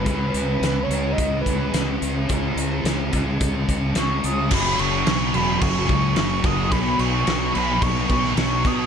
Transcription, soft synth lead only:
\new Staff \with { instrumentName = "Soft synth lead" } { \time 4/4 \key cis \minor \tempo 4 = 108 b'4 b'8 cis''8 dis''8 b'4 r8 | r2. cis'''8 dis'''8 | b''8 cis'''8 cis'''8 b''8 cis'''8 cis'''8 cis'''8 dis'''8 | b''8 cis'''8 cis'''8 b''8 cis'''4 cis'''8 dis'''8 | }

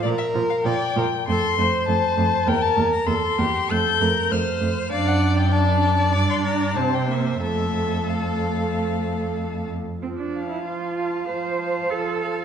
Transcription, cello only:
\new Staff \with { instrumentName = "Cello" } { \clef bass \time 4/4 \key f \major \tempo 4 = 97 bes,8 bes,8 bes,8 bes,8 f,8 f,8 f,8 f,8 | e,8 e,8 e,8 e,8 f,8 f,8 f,8 f,8 | fis,2 g,4 c4 | f,2.~ f,8 r8 |
c'16 d'8 e'16 f'4 c''4 a'4 | }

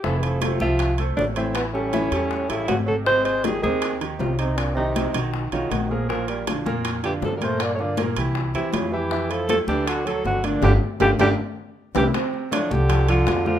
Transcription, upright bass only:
\new Staff \with { instrumentName = "Upright bass" } { \clef bass \time 4/4 \key f \major \tempo 4 = 159 f,,4. c,4. a,,4~ | a,,4. e,4 a,,8 aes,,4~ | aes,,4. ees,4. c,4~ | c,4. b,,4 b,,8 bes,,4~ |
bes,,4. f,4. g,4~ | g,4. c,4 e,8 f,4~ | f,4. d,4. g,,4 | g,,8 r8 g,,8 g,,8 r4. c,8 |
r4. c,4. f,4 | }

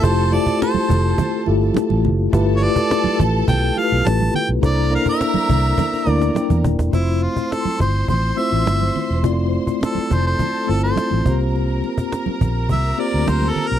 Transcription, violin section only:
\new Staff \with { instrumentName = "Violin section" } { \time 4/4 \key f \major \tempo 4 = 104 <a' a''>2.~ <a' a''>8 r8 | <a' a''>2.~ <a' a''>8 r8 | <bes' bes''>2.~ <bes' bes''>8 r8 | <c'' c'''>1~ |
<c'' c'''>4. <a' a''>2 <bes' bes''>8~ | <bes' bes''>1 | }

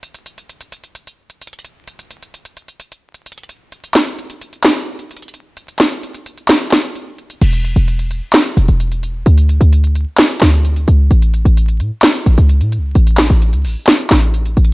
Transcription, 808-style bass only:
\new Staff \with { instrumentName = "808-style bass" } { \clef bass \time 4/4 \key a \mixolydian \tempo 4 = 130 r1 | r1 | r1 | r1 |
e,,8. e,,4 r8. e,,16 e,,4~ e,,16 | d,8. d,4 r8. d,4 cis,8 | a,,8. a,,8. a,16 r8. a,,16 cis,8 a,16. cis,16. | a,,8. a,,8 cis,16 a,,16 r8. a,,4 a,,8 | }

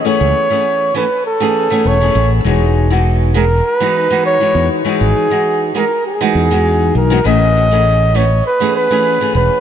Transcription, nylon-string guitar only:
\new Staff \with { instrumentName = "Nylon-string guitar" } { \time 4/4 \key a \lydian \tempo 4 = 100 <e a b cis' gis'>8. <e a b cis' gis'>8. <e a b cis' a'>16 r8 <e a b cis' gis'>8 <e a b cis' gis'>8 <e a b cis' gis'>8. | <e gis b dis' fis'>8. <e gis b dis' fis'>8. <e gis b dis' gis'>16 r8 <e gis b dis' fis'>8 <e gis b dis' fis'>8 <e gis b dis' fis'>8. | <e gis b dis' fis'>8. <e gis b dis' fis'>8. <e gis b dis' gis'>16 r8 <e gis b dis' fis'>8 <e gis b dis' fis'>4 <e gis b dis' fis'>16 | <e a b cis' gis'>8. <e a b cis' gis'>8. <e a b cis' a'>16 r8 <e a b cis' gis'>8 <e a b cis' gis'>8 <e a b cis' gis'>8. | }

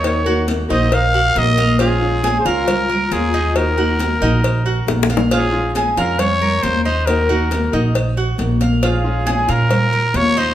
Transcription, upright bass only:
\new Staff \with { instrumentName = "Upright bass" } { \clef bass \time 4/4 \key bes \minor \tempo 4 = 136 ees,4. bes,,4. bes,,4~ | bes,,4. des,4. ees,4~ | ees,4. bes,,4. bes,,4~ | bes,,4. f,4. ees,4~ |
ees,4. bes,,4. bes,,4~ | bes,,4. bes,4. ees,4 | }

